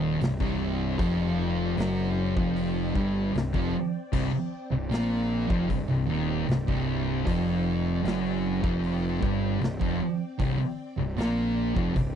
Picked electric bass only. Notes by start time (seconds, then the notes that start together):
Already playing: D#1
0.20 C1
0.40 C1
0.99 F1
1.77 F#1
2.36 F1
2.95 G1
3.33 C1
3.54 F1
4.13 C1
4.32 muted picked electric bass stroke
4.71 C1
4.91 A#1
5.50 F1
5.70 C1
5.88 C1
6.08 D#1
6.47 C1
6.68 C1
7.26 F1
8.04 F#1
8.63 F1
9.22 G1
9.60 C1
9.81 F1
10.40 C1
10.59 muted picked electric bass stroke
10.98 C1
11.17 A#1
11.76 F1
11.96 C1